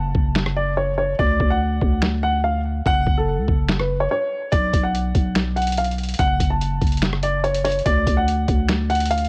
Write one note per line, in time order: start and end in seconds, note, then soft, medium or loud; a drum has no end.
0.00 0.13 F#1 loud
0.00 0.33 A5 medium
0.00 downlifter medium
0.15 1.15 F#1 loud
0.15 kick medium
0.35 finger snap medium
0.35 snare loud
0.46 cross-stick medium
0.56 0.73 D5 medium
0.77 0.93 C#5 medium
0.98 1.14 C#5 medium
1.19 1.39 D2 loud
1.19 1.48 D5 loud
1.19 kick loud
1.40 1.80 D2 loud
1.40 kick medium
1.50 1.99 F#5 medium
1.81 2.82 D2 loud
1.81 kick medium
2.02 finger snap medium
2.02 snare loud
2.23 2.39 F#5 medium
2.44 2.60 F5 medium
2.86 3.06 F#1 loud
2.86 3.15 F#5 loud
2.86 kick loud
3.07 3.39 F#1 loud
3.07 kick medium
3.18 3.76 A4 medium
3.38 3.48 C#2 loud
3.48 4.08 F#1 loud
3.48 kick loud
3.69 finger snap medium
3.69 snare loud
3.79 3.96 B4 medium
3.79 cross-stick medium
4.00 4.08 C#5 medium
4.11 4.50 C#5 medium
4.52 4.72 B1 loud
4.52 4.81 D5 loud
4.52 kick loud
4.52 closed hi-hat medium
4.73 5.13 B1 loud
4.73 kick medium
4.73 closed hi-hat medium
4.83 5.32 F#5 medium
4.95 closed hi-hat medium
5.15 6.15 B1 loud
5.15 kick medium
5.15 closed hi-hat medium
5.35 finger snap medium
5.35 snare loud
5.35 closed hi-hat medium
5.56 5.72 F#5 medium
5.56 closed hi-hat medium
5.62 closed hi-hat medium
5.67 closed hi-hat medium
5.72 closed hi-hat medium
5.77 5.94 F5 medium
5.77 closed hi-hat medium
5.84 closed hi-hat medium
5.91 closed hi-hat soft
5.98 closed hi-hat soft
6.03 closed hi-hat medium
6.09 closed hi-hat medium
6.14 closed hi-hat medium
6.19 6.39 F#1 loud
6.19 6.48 F#5 loud
6.19 kick loud
6.19 closed hi-hat medium
6.40 6.80 F#1 loud
6.40 kick medium
6.40 closed hi-hat medium
6.50 6.99 A5 medium
6.61 closed hi-hat medium
6.81 7.82 F#1 loud
6.81 kick medium
6.81 closed hi-hat soft
6.87 closed hi-hat soft
6.92 closed hi-hat medium
6.97 closed hi-hat medium
7.02 finger snap medium
7.02 snare loud
7.02 closed hi-hat medium
7.13 cross-stick medium
7.23 7.39 D5 medium
7.23 closed hi-hat medium
7.44 7.60 C#5 medium
7.44 closed hi-hat soft
7.54 closed hi-hat medium
7.64 7.81 C#5 medium
7.64 closed hi-hat medium
7.64 open hi-hat medium
7.72 closed hi-hat medium
7.79 closed hi-hat soft
7.86 8.06 D2 loud
7.86 8.15 D5 loud
7.86 kick loud
7.86 closed hi-hat medium
8.07 8.47 D2 loud
8.07 kick medium
8.07 closed hi-hat medium
8.17 8.66 F#5 medium
8.28 closed hi-hat medium
8.48 9.29 D2 loud
8.48 kick medium
8.48 closed hi-hat medium
8.69 finger snap medium
8.69 snare loud
8.69 closed hi-hat medium
8.90 9.06 F#5 medium
8.90 closed hi-hat medium
8.95 closed hi-hat medium
9.00 closed hi-hat medium
9.05 closed hi-hat medium
9.11 9.27 F5 medium
9.11 closed hi-hat medium
9.18 closed hi-hat medium
9.25 closed hi-hat soft